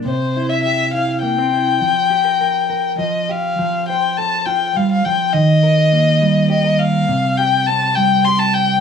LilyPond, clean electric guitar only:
\new Staff \with { instrumentName = "Clean electric guitar" } { \time 3/4 \key f \mixolydian \tempo 4 = 102 << { r8 e'8 g'8 e'8 bes16 c'16 e'8 | r8 g'16 bes'16 bes'8 bes'8 r8 g'8~ | g'8 c''8 a'2 | r8 bes'8 bes4 g'16 bes'8. |
r8 g'8 c'4 g'4 | } \\ { c2. | f2 f4 | f4. f'8 g8 f8 | ees4. g4. |
c4. g4. | } >> }